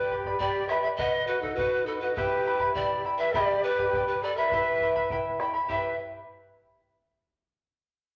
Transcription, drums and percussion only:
0.10 bombo low soft
0.25 bombo low medium
0.40 bombo low medium
0.69 bombo rim soft
0.98 bombo low medium
1.43 bombo low soft
1.58 bombo low medium
2.17 bombo low medium
2.60 bombo low medium
2.75 bombo low medium
3.34 bombo low medium
3.79 bombo low medium
3.93 bombo low medium
4.52 bombo low medium
4.81 bombo low soft
4.96 bombo low soft
5.10 bombo low medium
5.40 bombo rim soft
5.69 bombo low medium

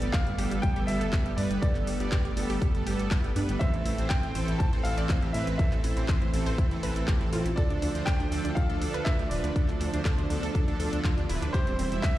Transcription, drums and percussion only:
0.02 closed hi-hat medium
0.13 kick loud
0.13 clap loud
0.13 closed hi-hat medium
0.27 closed hi-hat soft
0.38 open hi-hat loud
0.51 closed hi-hat medium
0.63 kick loud
0.63 closed hi-hat medium
0.76 closed hi-hat soft
0.88 open hi-hat loud
1.01 closed hi-hat medium
1.13 kick loud
1.13 clap loud
1.13 closed hi-hat medium
1.26 closed hi-hat soft
1.38 open hi-hat loud
1.51 closed hi-hat medium
1.62 kick loud
1.62 closed hi-hat medium
1.75 clap soft
1.75 closed hi-hat soft
1.87 open hi-hat loud
2.00 closed hi-hat medium
2.12 kick loud
2.12 clap loud
2.12 closed hi-hat medium
2.25 closed hi-hat soft
2.37 open hi-hat loud
2.50 open hi-hat medium
2.62 kick loud
2.62 closed hi-hat medium
2.75 closed hi-hat soft
2.87 open hi-hat loud
2.99 closed hi-hat medium
3.11 kick loud
3.11 clap loud
3.11 closed hi-hat medium
3.24 closed hi-hat soft
3.36 open hi-hat loud
3.49 closed hi-hat medium
3.61 kick loud
3.61 closed hi-hat medium
3.74 closed hi-hat soft
3.86 open hi-hat loud
3.98 closed hi-hat medium
4.10 kick loud
4.10 clap loud
4.10 closed hi-hat medium
4.23 closed hi-hat soft
4.35 open hi-hat loud
4.48 closed hi-hat medium
4.60 kick loud
4.60 closed hi-hat medium
4.73 closed hi-hat soft
4.85 open hi-hat loud
4.98 closed hi-hat medium
5.09 kick loud
5.09 clap loud
5.09 closed hi-hat medium
5.22 closed hi-hat soft
5.34 open hi-hat loud
5.47 closed hi-hat medium
5.59 kick loud
5.59 closed hi-hat medium
5.72 clap soft
5.72 closed hi-hat soft
5.84 open hi-hat loud
5.97 closed hi-hat medium
6.08 kick loud
6.08 clap loud
6.08 closed hi-hat medium
6.22 closed hi-hat soft
6.34 open hi-hat loud
6.46 open hi-hat medium
6.58 kick loud
6.58 closed hi-hat medium
6.71 closed hi-hat soft
6.83 open hi-hat loud
6.96 closed hi-hat soft
7.08 kick loud
7.08 clap loud
7.08 closed hi-hat medium
7.21 closed hi-hat soft
7.33 open hi-hat loud
7.46 closed hi-hat medium
7.57 kick loud
7.57 closed hi-hat medium
7.70 closed hi-hat soft
7.82 open hi-hat loud
7.95 closed hi-hat medium
8.07 kick loud
8.07 clap loud
8.07 closed hi-hat medium
8.20 closed hi-hat soft
8.32 open hi-hat loud
8.45 closed hi-hat medium
8.57 kick loud
8.57 closed hi-hat soft
8.70 closed hi-hat soft
8.82 open hi-hat loud
8.94 closed hi-hat medium
9.06 kick loud
9.06 clap loud
9.06 closed hi-hat medium
9.19 closed hi-hat soft
9.31 open hi-hat loud
9.44 closed hi-hat medium
9.56 kick loud
9.56 closed hi-hat medium
9.68 clap soft
9.68 closed hi-hat soft
9.81 open hi-hat loud
9.94 closed hi-hat medium
10.05 kick loud
10.05 clap loud
10.05 closed hi-hat medium
10.19 closed hi-hat soft
10.30 open hi-hat loud
10.43 open hi-hat medium
10.55 kick loud
10.55 closed hi-hat medium
10.68 closed hi-hat soft
10.80 open hi-hat loud
10.93 closed hi-hat medium
11.04 kick loud
11.04 clap loud
11.04 closed hi-hat medium
11.18 closed hi-hat soft
11.29 open hi-hat loud
11.42 closed hi-hat medium
11.54 kick loud
11.54 closed hi-hat medium
11.67 closed hi-hat soft
11.79 open hi-hat loud
11.92 closed hi-hat medium
12.03 kick loud
12.03 clap loud
12.03 closed hi-hat medium

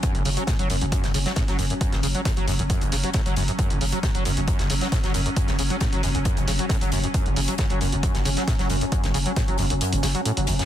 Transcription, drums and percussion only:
0.03 kick loud
0.03 closed hi-hat medium
0.15 closed hi-hat medium
0.25 open hi-hat medium
0.25 open hi-hat loud
0.37 closed hi-hat soft
0.37 closed hi-hat medium
0.47 kick loud
0.47 snare loud
0.47 closed hi-hat medium
0.59 closed hi-hat medium
0.70 closed hi-hat medium
0.70 open hi-hat medium
0.81 closed hi-hat medium
0.92 kick loud
0.92 closed hi-hat medium
1.04 snare soft
1.04 closed hi-hat medium
1.14 closed hi-hat medium
1.14 open hi-hat loud
1.26 snare medium
1.26 closed hi-hat medium
1.36 kick loud
1.36 snare loud
1.36 closed hi-hat medium
1.48 snare soft
1.48 closed hi-hat medium
1.59 closed hi-hat medium
1.59 open hi-hat loud
1.70 closed hi-hat medium
1.81 kick loud
1.81 closed hi-hat medium
1.92 snare medium
1.92 closed hi-hat medium
2.03 closed hi-hat medium
2.03 open hi-hat loud
2.15 closed hi-hat medium
2.25 kick loud
2.25 snare loud
2.25 closed hi-hat medium
2.37 closed hi-hat medium
2.48 closed hi-hat medium
2.48 open hi-hat loud
2.59 closed hi-hat soft
2.70 kick loud
2.70 closed hi-hat medium
2.81 closed hi-hat medium
2.81 closed hi-hat soft
2.92 snare soft
2.92 closed hi-hat medium
2.92 open hi-hat loud
3.04 closed hi-hat soft
3.13 kick loud
3.13 snare loud
3.13 closed hi-hat medium
3.26 closed hi-hat medium
3.26 closed hi-hat soft
3.36 closed hi-hat medium
3.36 open hi-hat medium
3.48 closed hi-hat medium
3.59 kick loud
3.59 closed hi-hat medium
3.70 closed hi-hat medium
3.81 open hi-hat loud
3.81 open hi-hat medium
3.92 closed hi-hat soft
4.03 kick loud
4.03 snare loud
4.03 closed hi-hat medium
4.15 closed hi-hat soft
4.25 closed hi-hat medium
4.25 open hi-hat medium
4.37 closed hi-hat medium
4.48 kick loud
4.48 closed hi-hat medium
4.59 snare soft
4.59 closed hi-hat medium
4.70 closed hi-hat medium
4.70 open hi-hat loud
4.81 snare soft
4.81 closed hi-hat soft
4.92 kick loud
4.92 snare loud
4.92 closed hi-hat medium
5.04 snare soft
5.04 closed hi-hat soft
5.14 closed hi-hat medium
5.14 open hi-hat medium
5.26 closed hi-hat medium
5.36 kick loud
5.36 closed hi-hat medium
5.48 snare soft
5.48 closed hi-hat soft
5.59 closed hi-hat medium
5.59 open hi-hat loud
5.70 closed hi-hat medium
5.80 kick loud
5.80 snare loud
5.80 closed hi-hat medium
5.93 closed hi-hat medium
6.03 closed hi-hat medium
6.03 open hi-hat medium
6.15 closed hi-hat soft
6.25 kick loud
6.25 closed hi-hat medium
6.37 closed hi-hat medium
6.37 closed hi-hat soft
6.48 snare soft
6.48 closed hi-hat medium
6.48 open hi-hat loud
6.59 closed hi-hat soft
6.69 kick loud
6.69 snare loud
6.69 closed hi-hat medium
6.81 closed hi-hat medium
6.81 closed hi-hat soft
6.92 closed hi-hat medium
6.92 open hi-hat medium
7.04 closed hi-hat soft
7.14 kick loud
7.14 closed hi-hat medium
7.26 closed hi-hat soft
7.36 open hi-hat loud
7.36 open hi-hat medium
7.48 closed hi-hat medium
7.48 closed hi-hat soft
7.58 kick loud
7.58 snare loud
7.58 closed hi-hat medium
7.70 closed hi-hat medium
7.81 closed hi-hat medium
7.81 open hi-hat medium
7.92 closed hi-hat medium
8.03 kick loud
8.03 closed hi-hat medium
8.14 snare medium
8.14 closed hi-hat medium
8.25 closed hi-hat medium
8.25 open hi-hat loud
8.37 snare soft
8.37 closed hi-hat medium
8.48 kick loud
8.48 snare loud
8.48 closed hi-hat medium
8.59 snare soft
8.59 closed hi-hat medium
8.69 closed hi-hat medium
8.69 open hi-hat medium
8.81 closed hi-hat soft
8.92 kick loud
8.92 closed hi-hat medium
9.04 snare medium
9.04 closed hi-hat medium
9.14 closed hi-hat medium
9.14 open hi-hat loud
9.26 closed hi-hat medium
9.36 kick loud
9.36 snare loud
9.36 closed hi-hat medium
9.48 closed hi-hat medium
9.58 closed hi-hat medium
9.58 open hi-hat medium
9.70 closed hi-hat medium
9.81 closed hi-hat medium
9.93 closed hi-hat medium
9.93 closed hi-hat soft
10.03 snare medium
10.03 closed hi-hat medium
10.03 open hi-hat loud
10.15 closed hi-hat soft
10.25 closed hi-hat medium
10.37 closed hi-hat medium
10.47 closed hi-hat medium
10.47 open hi-hat medium
10.59 snare soft
10.59 closed hi-hat medium

